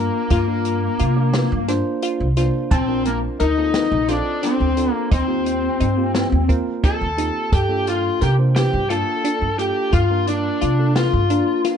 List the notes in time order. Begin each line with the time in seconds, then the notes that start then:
Already playing: A#3 D4 F4 A#4
0.30 G2 A#3 F4 A#4, kick, closed hi-hat
0.48 A#3 D4 F4 A#4
0.65 closed hi-hat
0.99 C3 F4, closed hi-hat
1.16 A#3 D4 F4 A#4
1.34 snare, closed hi-hat
1.52 G2
1.68 A#3 D4 F4 C5, snare, closed hi-hat
2.02 F4, closed hi-hat
2.20 C2
2.37 A#3 D4 F4 C5, snare, closed hi-hat
2.71 A#1 C4 C5 A5, kick, closed hi-hat
2.88 C4 D4 F4 A#4
3.05 A#3 A#4, closed hi-hat
3.40 D2 D#4 A#4 D#5, closed hi-hat
3.57 A#3 C4 F4 A4
3.74 snare, closed hi-hat
3.91 A#1
4.08 C4 D4 F4 A4 D5, snare, closed hi-hat
4.43 C4 D4 C5, snare, closed hi-hat
4.60 D2
4.77 C4 D4 F4 A4, closed hi-hat
4.92 A#3 A#4
5.11 D#2 C4 D#4 C5, kick, closed hi-hat
5.28 A#3 C4 F4 G4
5.46 closed hi-hat
5.80 G2 D#4, closed hi-hat
5.97 A#3 C4 F4 G4
6.15 snare, closed hi-hat
6.32 D#2
6.48 A#3 C4 F4 A#4, kick, closed hi-hat
6.84 D#4 A4 A5, kick, closed hi-hat
7.01 D#2
7.17 A#3 C4 D#4 F4 G4, closed hi-hat
7.52 G2 G4 A4 G5, kick, closed hi-hat
7.69 A#3 D4 F4 A4
7.87 F4 F5, closed hi-hat
8.21 C3 G4 A#4 G5, snare, closed hi-hat
8.38 A#3 D4 F4 C5
8.56 G4 G5, snare, closed hi-hat
8.73 G2
8.90 A#3 D4 F4 A4 A5, closed hi-hat
9.24 D4, closed hi-hat
9.42 G2
9.58 A#3 D4 F4 G4 A4 G5, closed hi-hat
9.93 G2 F4 F5, kick, closed hi-hat
10.10 A#3 D4 F4 A#4
10.27 D4 D5, closed hi-hat
10.61 C3 F4, closed hi-hat
10.79 A#3 D4 F4 A4
10.96 F4 F5, snare, closed hi-hat
11.13 G2
11.30 A#3 D4 F4 A#4, closed hi-hat
11.65 F4, snare, closed hi-hat